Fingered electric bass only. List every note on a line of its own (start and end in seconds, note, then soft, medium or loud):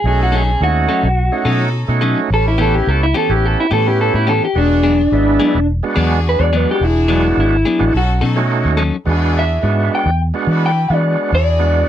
0.04 0.55 B1 loud
0.61 0.86 D#2 medium
1.03 1.29 B1 medium
1.45 1.84 B2 medium
1.89 2.14 B2 medium
2.30 2.81 A1 medium
2.87 3.12 C#2 medium
3.29 3.55 A1 medium
3.71 4.09 A2 medium
4.14 4.39 A2 medium
4.56 5.06 E1 loud
5.12 5.37 G#1 medium
5.55 5.80 E1 medium
5.97 6.35 E2 medium
6.40 6.65 E2 medium
6.81 7.31 E1 loud
7.37 7.63 G#1 loud
7.81 7.92 A1 loud
7.94 8.19 B1 loud
8.22 8.66 B2 medium
8.65 8.90 D#2 medium
9.07 9.57 E2 medium
9.63 9.88 G#2 medium
10.06 10.31 E2 medium
10.47 10.86 E3 medium
10.90 11.15 E3 medium
11.32 11.82 E2 loud